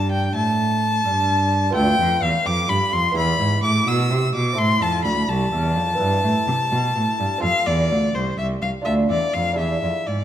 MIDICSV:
0, 0, Header, 1, 4, 480
1, 0, Start_track
1, 0, Tempo, 469116
1, 1793, Time_signature, 12, 3, 24, 8
1, 4195, Tempo, 477327
1, 10373, End_track
2, 0, Start_track
2, 0, Title_t, "Violin"
2, 0, Program_c, 0, 40
2, 0, Note_on_c, 0, 81, 73
2, 110, Note_off_c, 0, 81, 0
2, 116, Note_on_c, 0, 79, 69
2, 349, Note_off_c, 0, 79, 0
2, 358, Note_on_c, 0, 81, 87
2, 1766, Note_off_c, 0, 81, 0
2, 1789, Note_on_c, 0, 79, 91
2, 2276, Note_on_c, 0, 77, 76
2, 2291, Note_off_c, 0, 79, 0
2, 2519, Note_on_c, 0, 86, 84
2, 2534, Note_off_c, 0, 77, 0
2, 2754, Note_on_c, 0, 83, 77
2, 2770, Note_off_c, 0, 86, 0
2, 2997, Note_on_c, 0, 84, 75
2, 3013, Note_off_c, 0, 83, 0
2, 3235, Note_off_c, 0, 84, 0
2, 3245, Note_on_c, 0, 83, 82
2, 3708, Note_off_c, 0, 83, 0
2, 3718, Note_on_c, 0, 86, 83
2, 3967, Note_on_c, 0, 88, 70
2, 3982, Note_off_c, 0, 86, 0
2, 4438, Note_off_c, 0, 88, 0
2, 4444, Note_on_c, 0, 86, 73
2, 4679, Note_on_c, 0, 84, 87
2, 4694, Note_off_c, 0, 86, 0
2, 4916, Note_on_c, 0, 81, 83
2, 4931, Note_off_c, 0, 84, 0
2, 5142, Note_off_c, 0, 81, 0
2, 5148, Note_on_c, 0, 83, 69
2, 5387, Note_on_c, 0, 81, 81
2, 5402, Note_off_c, 0, 83, 0
2, 7541, Note_off_c, 0, 81, 0
2, 7545, Note_on_c, 0, 77, 93
2, 7774, Note_on_c, 0, 74, 79
2, 7789, Note_off_c, 0, 77, 0
2, 8262, Note_on_c, 0, 72, 60
2, 8277, Note_off_c, 0, 74, 0
2, 8492, Note_off_c, 0, 72, 0
2, 8498, Note_on_c, 0, 76, 66
2, 8579, Note_off_c, 0, 76, 0
2, 8739, Note_on_c, 0, 77, 61
2, 8820, Note_off_c, 0, 77, 0
2, 8972, Note_on_c, 0, 76, 66
2, 9053, Note_off_c, 0, 76, 0
2, 9223, Note_on_c, 0, 74, 66
2, 9458, Note_on_c, 0, 77, 62
2, 9474, Note_off_c, 0, 74, 0
2, 9699, Note_off_c, 0, 77, 0
2, 9705, Note_on_c, 0, 76, 57
2, 10194, Note_on_c, 0, 74, 49
2, 10209, Note_off_c, 0, 76, 0
2, 10373, Note_off_c, 0, 74, 0
2, 10373, End_track
3, 0, Start_track
3, 0, Title_t, "Lute"
3, 0, Program_c, 1, 24
3, 0, Note_on_c, 1, 43, 44
3, 0, Note_on_c, 1, 62, 50
3, 0, Note_on_c, 1, 65, 49
3, 0, Note_on_c, 1, 69, 43
3, 313, Note_off_c, 1, 43, 0
3, 351, Note_on_c, 1, 45, 45
3, 1031, Note_off_c, 1, 45, 0
3, 1076, Note_on_c, 1, 43, 47
3, 1727, Note_off_c, 1, 62, 0
3, 1734, Note_off_c, 1, 65, 0
3, 1742, Note_off_c, 1, 69, 0
3, 1744, Note_on_c, 1, 59, 50
3, 1753, Note_off_c, 1, 43, 0
3, 1756, Note_on_c, 1, 65, 45
3, 1775, Note_on_c, 1, 69, 50
3, 1788, Note_on_c, 1, 38, 53
3, 2006, Note_off_c, 1, 38, 0
3, 2030, Note_on_c, 1, 41, 46
3, 2247, Note_off_c, 1, 41, 0
3, 2264, Note_on_c, 1, 40, 54
3, 2483, Note_off_c, 1, 40, 0
3, 2507, Note_on_c, 1, 41, 51
3, 2725, Note_off_c, 1, 41, 0
3, 2744, Note_on_c, 1, 43, 43
3, 2964, Note_off_c, 1, 43, 0
3, 2985, Note_on_c, 1, 41, 48
3, 3167, Note_off_c, 1, 59, 0
3, 3173, Note_off_c, 1, 65, 0
3, 3183, Note_off_c, 1, 69, 0
3, 3188, Note_on_c, 1, 59, 41
3, 3204, Note_on_c, 1, 64, 41
3, 3205, Note_off_c, 1, 41, 0
3, 3220, Note_on_c, 1, 68, 41
3, 3233, Note_on_c, 1, 40, 54
3, 3448, Note_off_c, 1, 40, 0
3, 3468, Note_on_c, 1, 44, 49
3, 3674, Note_off_c, 1, 59, 0
3, 3686, Note_off_c, 1, 44, 0
3, 3712, Note_on_c, 1, 45, 57
3, 3929, Note_off_c, 1, 45, 0
3, 3956, Note_on_c, 1, 47, 56
3, 4173, Note_off_c, 1, 47, 0
3, 4200, Note_on_c, 1, 48, 51
3, 4413, Note_off_c, 1, 48, 0
3, 4438, Note_on_c, 1, 47, 46
3, 4619, Note_off_c, 1, 64, 0
3, 4626, Note_on_c, 1, 60, 50
3, 4627, Note_off_c, 1, 68, 0
3, 4641, Note_on_c, 1, 64, 49
3, 4651, Note_off_c, 1, 47, 0
3, 4655, Note_on_c, 1, 69, 45
3, 4670, Note_on_c, 1, 45, 53
3, 4886, Note_off_c, 1, 45, 0
3, 4906, Note_on_c, 1, 41, 52
3, 5123, Note_off_c, 1, 41, 0
3, 5145, Note_on_c, 1, 38, 48
3, 5361, Note_off_c, 1, 38, 0
3, 5624, Note_on_c, 1, 40, 47
3, 5840, Note_off_c, 1, 40, 0
3, 5858, Note_on_c, 1, 41, 47
3, 6040, Note_off_c, 1, 60, 0
3, 6048, Note_off_c, 1, 64, 0
3, 6052, Note_on_c, 1, 59, 39
3, 6055, Note_off_c, 1, 69, 0
3, 6069, Note_on_c, 1, 64, 37
3, 6076, Note_off_c, 1, 41, 0
3, 6083, Note_on_c, 1, 71, 44
3, 6102, Note_on_c, 1, 43, 47
3, 6309, Note_off_c, 1, 59, 0
3, 6318, Note_off_c, 1, 43, 0
3, 6342, Note_on_c, 1, 45, 46
3, 6558, Note_off_c, 1, 45, 0
3, 6587, Note_on_c, 1, 48, 53
3, 6801, Note_off_c, 1, 48, 0
3, 6826, Note_on_c, 1, 47, 49
3, 7040, Note_off_c, 1, 47, 0
3, 7068, Note_on_c, 1, 45, 49
3, 7280, Note_off_c, 1, 45, 0
3, 7306, Note_on_c, 1, 43, 47
3, 7483, Note_off_c, 1, 64, 0
3, 7490, Note_off_c, 1, 71, 0
3, 7494, Note_on_c, 1, 60, 51
3, 7512, Note_on_c, 1, 65, 49
3, 7519, Note_off_c, 1, 43, 0
3, 7525, Note_on_c, 1, 69, 47
3, 7539, Note_on_c, 1, 41, 49
3, 7750, Note_off_c, 1, 60, 0
3, 7756, Note_off_c, 1, 41, 0
3, 7785, Note_on_c, 1, 40, 44
3, 7999, Note_off_c, 1, 40, 0
3, 8031, Note_on_c, 1, 38, 49
3, 8241, Note_off_c, 1, 38, 0
3, 8923, Note_off_c, 1, 65, 0
3, 8929, Note_off_c, 1, 69, 0
3, 8937, Note_on_c, 1, 62, 38
3, 8952, Note_on_c, 1, 65, 38
3, 8971, Note_on_c, 1, 69, 36
3, 8982, Note_on_c, 1, 38, 46
3, 9197, Note_off_c, 1, 38, 0
3, 9226, Note_on_c, 1, 40, 43
3, 9441, Note_off_c, 1, 40, 0
3, 9461, Note_on_c, 1, 41, 42
3, 9645, Note_off_c, 1, 62, 0
3, 9657, Note_on_c, 1, 62, 41
3, 9669, Note_off_c, 1, 65, 0
3, 9673, Note_on_c, 1, 64, 36
3, 9679, Note_off_c, 1, 69, 0
3, 9680, Note_off_c, 1, 41, 0
3, 9686, Note_on_c, 1, 68, 36
3, 9705, Note_on_c, 1, 40, 39
3, 9923, Note_off_c, 1, 40, 0
3, 9952, Note_on_c, 1, 41, 39
3, 10169, Note_off_c, 1, 41, 0
3, 10189, Note_on_c, 1, 44, 43
3, 10373, Note_off_c, 1, 44, 0
3, 10373, Note_off_c, 1, 62, 0
3, 10373, Note_off_c, 1, 64, 0
3, 10373, Note_off_c, 1, 68, 0
3, 10373, End_track
4, 0, Start_track
4, 0, Title_t, "Cello"
4, 0, Program_c, 2, 42
4, 0, Note_on_c, 2, 43, 59
4, 345, Note_off_c, 2, 43, 0
4, 351, Note_on_c, 2, 45, 55
4, 1057, Note_off_c, 2, 45, 0
4, 1074, Note_on_c, 2, 43, 59
4, 1779, Note_off_c, 2, 43, 0
4, 1796, Note_on_c, 2, 38, 67
4, 2018, Note_off_c, 2, 38, 0
4, 2036, Note_on_c, 2, 41, 65
4, 2269, Note_off_c, 2, 41, 0
4, 2273, Note_on_c, 2, 40, 65
4, 2355, Note_off_c, 2, 40, 0
4, 2513, Note_on_c, 2, 41, 58
4, 2747, Note_off_c, 2, 41, 0
4, 2753, Note_on_c, 2, 43, 59
4, 2835, Note_off_c, 2, 43, 0
4, 2994, Note_on_c, 2, 41, 62
4, 3229, Note_off_c, 2, 41, 0
4, 3235, Note_on_c, 2, 40, 64
4, 3468, Note_off_c, 2, 40, 0
4, 3476, Note_on_c, 2, 44, 53
4, 3709, Note_off_c, 2, 44, 0
4, 3718, Note_on_c, 2, 45, 59
4, 3948, Note_off_c, 2, 45, 0
4, 3955, Note_on_c, 2, 47, 64
4, 4197, Note_on_c, 2, 48, 59
4, 4212, Note_off_c, 2, 47, 0
4, 4435, Note_off_c, 2, 48, 0
4, 4440, Note_on_c, 2, 47, 56
4, 4668, Note_off_c, 2, 47, 0
4, 4674, Note_on_c, 2, 45, 66
4, 4907, Note_off_c, 2, 45, 0
4, 4912, Note_on_c, 2, 41, 63
4, 5145, Note_on_c, 2, 38, 58
4, 5160, Note_off_c, 2, 41, 0
4, 5382, Note_off_c, 2, 38, 0
4, 5388, Note_on_c, 2, 36, 60
4, 5622, Note_off_c, 2, 36, 0
4, 5627, Note_on_c, 2, 40, 62
4, 5860, Note_on_c, 2, 41, 57
4, 5875, Note_off_c, 2, 40, 0
4, 6102, Note_off_c, 2, 41, 0
4, 6108, Note_on_c, 2, 43, 61
4, 6336, Note_off_c, 2, 43, 0
4, 6342, Note_on_c, 2, 45, 58
4, 6422, Note_off_c, 2, 45, 0
4, 6584, Note_on_c, 2, 48, 56
4, 6665, Note_off_c, 2, 48, 0
4, 6822, Note_on_c, 2, 47, 57
4, 7057, Note_off_c, 2, 47, 0
4, 7067, Note_on_c, 2, 45, 54
4, 7148, Note_off_c, 2, 45, 0
4, 7307, Note_on_c, 2, 43, 52
4, 7387, Note_off_c, 2, 43, 0
4, 7544, Note_on_c, 2, 41, 68
4, 7625, Note_off_c, 2, 41, 0
4, 7786, Note_on_c, 2, 40, 62
4, 8027, Note_on_c, 2, 38, 55
4, 8042, Note_off_c, 2, 40, 0
4, 8256, Note_off_c, 2, 38, 0
4, 8262, Note_on_c, 2, 36, 53
4, 8495, Note_off_c, 2, 36, 0
4, 8501, Note_on_c, 2, 36, 57
4, 8734, Note_off_c, 2, 36, 0
4, 8739, Note_on_c, 2, 36, 45
4, 8820, Note_off_c, 2, 36, 0
4, 8981, Note_on_c, 2, 38, 52
4, 9216, Note_off_c, 2, 38, 0
4, 9221, Note_on_c, 2, 40, 42
4, 9302, Note_off_c, 2, 40, 0
4, 9463, Note_on_c, 2, 41, 51
4, 9703, Note_on_c, 2, 40, 48
4, 9718, Note_off_c, 2, 41, 0
4, 9946, Note_off_c, 2, 40, 0
4, 9951, Note_on_c, 2, 41, 54
4, 10031, Note_off_c, 2, 41, 0
4, 10194, Note_on_c, 2, 44, 43
4, 10373, Note_off_c, 2, 44, 0
4, 10373, End_track
0, 0, End_of_file